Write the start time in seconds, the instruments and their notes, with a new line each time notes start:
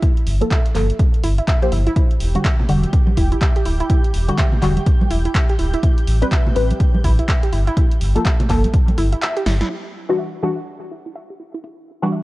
0.03 synth pluck E4, kick, closed hi-hat
0.17 closed hi-hat
0.27 sub bass G1, open hi-hat
0.41 synth stab F3 A#3 A4, closed hi-hat
0.51 synth pluck E5, kick, clap, closed hi-hat
0.66 closed hi-hat
0.75 sub bass G1, synth stab F3 A#3 A4, clap, open hi-hat
0.90 closed hi-hat
0.99 kick, closed hi-hat
1.14 closed hi-hat
1.24 sub bass G1, synth pluck E4, open hi-hat
1.38 synth pluck E4, closed hi-hat
1.48 synth pluck E5, kick, clap, closed hi-hat
1.62 synth stab F3 A#3 C5, synth pluck G4, closed hi-hat
1.72 sub bass G1, synth pluck E4, open hi-hat
1.87 synth pluck E4, closed hi-hat
1.96 synth pluck E4, analog synth pad G4 G6, kick, closed hi-hat
2.11 closed hi-hat
2.20 sub bass E1, open hi-hat
2.35 synth stab D3 G3 F#4, closed hi-hat
2.44 synth pluck E5, kick, clap, closed hi-hat
2.60 low conga
2.68 sub bass E1, synth stab D3 G3 F#4, open hi-hat
2.83 closed hi-hat, high conga
2.93 kick, closed hi-hat
3.07 high conga
3.17 sub bass E1, synth pluck E4, kick, open hi-hat
3.32 synth pluck E4, closed hi-hat
3.41 synth pluck E5, kick, clap, closed hi-hat
3.56 synth pluck G4, closed hi-hat
3.65 sub bass D1, synth pluck E4, open hi-hat
3.80 synth pluck E4, closed hi-hat
3.90 synth pluck E4, kick, closed hi-hat
4.04 closed hi-hat
4.14 sub bass E1, open hi-hat
4.28 synth stab D3 G3 F#4, closed hi-hat
4.38 synth pluck E5, kick, clap, closed hi-hat
4.52 low conga
4.62 sub bass E1, synth stab D3 G3 F#4, clap, open hi-hat
4.77 closed hi-hat, high conga
4.86 kick, closed hi-hat
5.01 high conga
5.11 sub bass E1, synth pluck E4, open hi-hat
5.25 synth pluck E4, closed hi-hat
5.35 synth pluck E5, kick, clap, closed hi-hat
5.50 synth pluck G4, closed hi-hat
5.59 sub bass D1, synth pluck E4, open hi-hat
5.74 synth pluck E4, closed hi-hat
5.83 synth pluck E4, kick, closed hi-hat
5.98 closed hi-hat
6.07 sub bass A1, open hi-hat
6.22 synth stab G3 C4 B4, closed hi-hat
6.32 synth pluck E5, kick, clap, closed hi-hat
6.47 low conga
6.55 sub bass A1, synth stab G3 C4 B4, open hi-hat
6.71 closed hi-hat, high conga
6.80 kick, closed hi-hat
6.94 high conga
7.04 sub bass A1, synth pluck E4, kick, open hi-hat
7.19 synth pluck E4, closed hi-hat
7.28 synth pluck E5, kick, clap, closed hi-hat
7.43 synth pluck G4, closed hi-hat
7.53 sub bass G1, synth pluck E4, open hi-hat
7.67 synth pluck E4, closed hi-hat
7.77 synth pluck E4, kick, closed hi-hat
7.91 closed hi-hat
8.01 sub bass G1, open hi-hat
8.15 synth stab F3 A#3 A4, closed hi-hat
8.25 synth pluck E5, kick, clap, closed hi-hat
8.40 closed hi-hat, low conga
8.49 sub bass G1, synth stab F3 A#3 A4, kick, clap, open hi-hat
8.64 closed hi-hat, high conga
8.74 kick, closed hi-hat
8.88 closed hi-hat, high conga
8.98 sub bass G1, synth pluck E4, open hi-hat
9.12 synth pluck E4, closed hi-hat
9.22 synth pluck E5, clap, closed hi-hat
9.37 synth pluck G4, closed hi-hat
9.46 sub bass G1, synth pluck E4, snare, open hi-hat
9.61 synth pluck E4, snare, closed hi-hat
10.09 synth stab E3 G3 D4 F#4
10.19 synth pluck E5
10.33 closed hi-hat
10.42 synth stab E3 G3 D4 F#4
10.58 closed hi-hat
10.67 closed hi-hat
10.82 closed hi-hat
10.91 synth pluck E4
11.06 synth pluck E4, closed hi-hat
11.15 synth pluck E5, closed hi-hat
11.30 synth pluck G4
11.40 synth pluck E4
11.54 synth pluck E4, closed hi-hat
11.64 synth pluck E4, closed hi-hat
12.02 synth stab E3 G3 D4 F#4, closed hi-hat
12.12 synth pluck E5, closed hi-hat